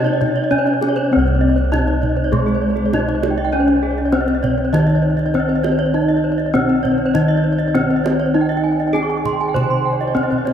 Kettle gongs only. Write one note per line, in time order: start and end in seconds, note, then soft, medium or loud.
0.00 1.69 C3 medium
0.00 0.47 C4 soft
0.51 0.59 C#4 soft
1.12 2.89 C4 medium
1.16 4.71 C2 medium
1.72 1.80 C#4 soft
2.92 3.00 C#4 soft
3.53 4.12 C#4 medium
4.13 4.21 C#4 soft
4.73 6.50 D#3 medium
5.34 5.42 C#4 soft
5.94 7.71 D#4 medium
6.54 6.62 C#4 soft
7.15 8.91 D#3 medium
7.76 7.84 C#4 soft
8.35 10.12 D#4 medium
8.95 9.03 C#4 soft
9.55 10.53 C3 soft
10.15 10.23 C#4 soft